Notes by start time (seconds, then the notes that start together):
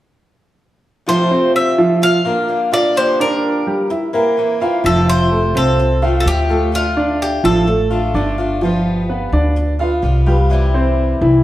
1.06 F2 C3 F3 A3 C4 F4 C5
1.31 C4 C5
1.56 E5
1.78 F3 F4
2.02 F5, muted steel-string acoustic guitar stroke
2.25 D3 A#3 D4 F4 A#4
2.48 D3 A#3 D4 F4
2.72 D3 A#3 D4 F4 D5 F5
2.95 G2 D3 F3 A#3 D4 G4 C5
3.20 D4 A#4 D5
3.67 G3 G4
3.90 E4 E5, muted steel-string acoustic guitar stroke
4.13 E3 A#3 C4 E4 A#4
4.37 E3 A#3 C4 E4
4.60 E3 A#3 C4 E4 F4 F5
4.84 F1 C3 F3 A3 C4 F4 A4
5.09 C5
5.31 A3 A4
5.55 C2 C4 A4 C5
5.79 muted steel-string acoustic guitar stroke
6.02 F3 A3 C4 F4 F5
6.20 A4
6.26 D2 F3 A3 C4 F4 G4
6.49 F3 A3 C4 F4 A4
6.72 D3 A3 D4 F4
6.97 D4 D5
7.22 G4
7.44 A1 F3 F4 A4
7.67 A3 A4, muted steel-string acoustic guitar stroke
7.91 A3 D4 F4
8.14 G1 D3 A3 D4 F4 D5
8.38 A3 D4 F4
8.61 F3 G3 B3 F4
9.09 B3 B4
9.32 D2 D4 D5
9.56 muted steel-string acoustic guitar stroke
9.79 B3 F4 F5
10.02 C2 G3 B3 F4
10.26 G3 B3 F4 G4
10.50 C3 E3 G3 C4 E4
10.74 C4 C5
11.21 C2 E3 E4